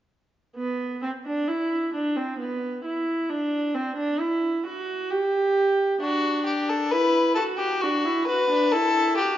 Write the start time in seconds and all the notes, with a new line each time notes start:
0.56 B3
1.02 C4
1.25 D4
1.48 E4
1.94 D4
2.16 C4
2.39 B3
2.84 E4
3.29 D4
3.74 C4
3.96 D4
4.20 E4
4.66 F#4
5.11 G4
6.01 D4 F#4
6.46 G4
6.69 A4
6.91 E4 B4
7.35 F#4 A4
7.58 G4
7.81 D4 F#4
8.05 E4
8.28 F#4 B4
8.50 D4
8.72 E4 A4
9.18 F#4 G4